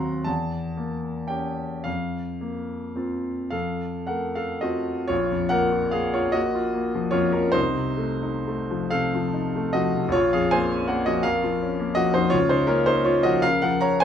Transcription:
Already playing: D#2 F#3 C4 F#4 F#5 A#5 C6
0.24 E2 A5
0.77 A#3
1.28 C#4 G4 G5
1.84 F2 F5
2.41 A#3
2.96 C4 F4
3.50 F2 A4 F5
4.07 A3 A#4 F#5
4.35 A4 F5
4.61 C4 F4 F#4 D#5
5.08 A#1 F4 C#5
5.31 F2
5.49 A#3 A#4 F#5
5.72 F4
5.91 A#3 G#4 F5
6.14 F4 C#5
6.32 A#3 F#4 D#5
6.55 F4
6.74 A#3
6.95 F3
7.11 F2 F4 C#5
7.32 F3 C#4 A#4
7.52 C2 D#4 C5
7.74 C3
7.97 A3
8.23 D#4
8.48 A3
8.70 F3
8.90 C3 A4 F5
9.14 F3
9.34 D#4
9.56 A3
9.73 F3 F#4 D#5
9.95 C3
10.08 A#1 C#5
10.13 F4
10.33 F2 G#4 F5
10.51 A#3 C5 G#5
10.71 C#4
10.87 A#3 A#4 F#5
11.06 F3 F#4 D#5
11.23 F2 A#4 F5
11.44 F3
11.62 C#4
11.79 A#3
11.95 F3 F#4 D#5
12.14 F2 D#4 C5
12.30 C#2 F4 C#5
12.49 C#3 D#4 C5
12.67 A#3 C#4 A#4
12.86 C#4 D#4 C5
13.05 A#3 F4 C#5
13.23 F3 F#4 D#5
13.42 C#3 A#4 F5
13.62 F3 A#4 F#5
13.81 C#4 C#5 A#5
14.00 G#5

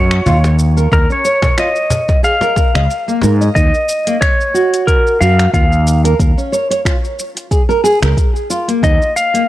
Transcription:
Already playing: F#2 F#4 C#5
0.11 finger snap, shaker
0.26 D#2 F4, cajon bass, shaker
0.44 cajon slap, shaker
0.59 shaker
0.77 A#4, shaker
0.92 D#2 A#4, kick, shaker
1.10 C#4 C#5, shaker
1.25 C#5, shaker
1.42 C#5, kick, cajon bass, cajon slap, shaker
1.58 F4 D#5, finger snap, shaker
1.76 shaker
1.90 cajon bass, shaker
2.09 kick, cajon slap, shaker
2.23 G#4 F5, shaker
2.41 A#4, cajon slap, shaker
2.56 A#4, kick, cajon slap, shaker
2.75 C#2 D#5, finger snap, shaker
2.90 shaker
3.08 A#3, shaker
3.22 G#2 A#4, cajon slap, shaker
3.41 D#5, shaker
3.55 D#2 D#4 D#5, kick, closed hi-hat, shaker
3.74 shaker
3.89 shaker
4.07 A#3, closed hi-hat, shaker
4.21 C#5, finger snap, kick, closed hi-hat, shaker
4.41 shaker
4.54 F#4, shaker
4.74 closed hi-hat, shaker
4.87 A#4, kick, closed hi-hat, shaker
5.07 shaker
5.21 F#2 F#4 F5, shaker
5.39 finger snap, closed hi-hat, shaker
5.53 D#2 F4 F5, kick, closed hi-hat, shaker
5.72 shaker
5.87 shaker
6.04 A#4, closed hi-hat, shaker
6.19 D#2 A#4, kick, closed hi-hat, shaker
6.37 C#4, shaker
6.52 C#5, shaker
6.70 C#5, closed hi-hat, shaker
6.85 F4, finger snap, kick, closed hi-hat, shaker
7.05 shaker
7.19 shaker
7.37 closed hi-hat, shaker
7.51 G#4, kick, closed hi-hat, shaker
7.69 A#4, shaker
7.84 G#4, shaker
8.02 C#2 A#4, finger snap, closed hi-hat, shaker
8.17 kick, closed hi-hat, shaker
8.36 shaker
8.50 F4, shaker
8.68 A#3, closed hi-hat, shaker
8.83 D#2 D#4 D#5, kick, closed hi-hat, shaker
9.02 shaker
9.16 F5, shaker
9.34 A#3, closed hi-hat, shaker

